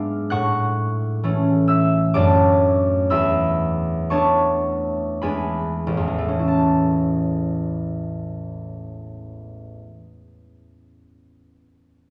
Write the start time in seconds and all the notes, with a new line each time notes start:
Already playing: G#2 G#3 B3 D4 E5 F5 D6 F6
0.30 A2 F#5 C#6 F#6
1.23 E3 A3 C#4
1.68 E5 E6
2.14 F#2 F#3 A3 D4 D5 A5 D6
3.10 E2 E5 B5 E6
4.10 A3 B3 D4 C#5 A5 C#6
5.22 E2 G#3 B3 D4 B4 G#5 B5
5.87 A1
5.97 E2
6.07 E3
6.18 A3
6.28 C#4
6.39 E4
6.48 A5